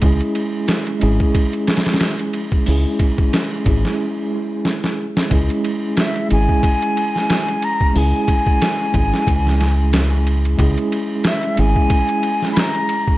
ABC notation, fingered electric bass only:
X:1
M:4/4
L:1/8
Q:"Swing 16ths" 1/4=91
K:C#dor
V:1 name="Fingered electric bass" clef=bass
C,, z2 G,,, z4 | C,, z2 G,,, z4 | C,, z2 G,,, z4 | C,, z2 G,,, C,,4 |
C,, z2 G,,, z4 |]